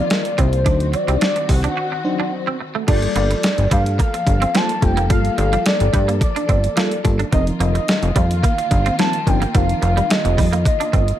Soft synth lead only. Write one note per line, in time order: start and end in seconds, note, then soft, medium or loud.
0.00 0.40 D5 medium
0.39 0.96 C5 medium
0.94 1.22 D5 medium
1.22 1.52 D5 loud
1.50 2.33 F#5 loud
2.89 3.14 D5 medium
3.16 3.68 D5 loud
3.72 3.98 F5 medium
4.00 4.57 F5 loud
4.56 4.85 A5 loud
4.83 5.10 G5 loud
5.11 5.37 F5 loud
5.39 5.64 F5 medium
5.66 6.18 D5 loud
6.22 7.01 D5 medium
7.33 7.45 D#5 loud
7.61 8.18 D#5 medium
8.16 8.43 F5 medium
8.44 8.95 F5 loud
8.99 9.29 A5 loud
9.28 9.57 G5 loud
9.55 9.83 F5 loud
9.83 10.12 F5 medium
10.11 10.66 D#5 medium
10.67 11.19 D#5 medium